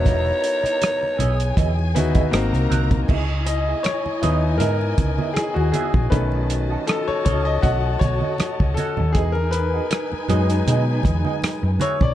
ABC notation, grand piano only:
X:1
M:4/4
L:1/16
Q:"Swing 16ths" 1/4=79
K:B
V:1 name="Grand piano"
[B,DEF]4- [B,DEF] z4 z [B,DEF]2 [A,^B,DF]4 | z2 d2 c4 A4 G F G2 | B2 z2 =A c c d f2 c4 A2 | G A B6 z6 c =d |]
V:2 name="Grand piano"
z16 | z6 [B,DE]6 z4 | [D,=A,C]16 | z6 [F,G,D]2 z8 |]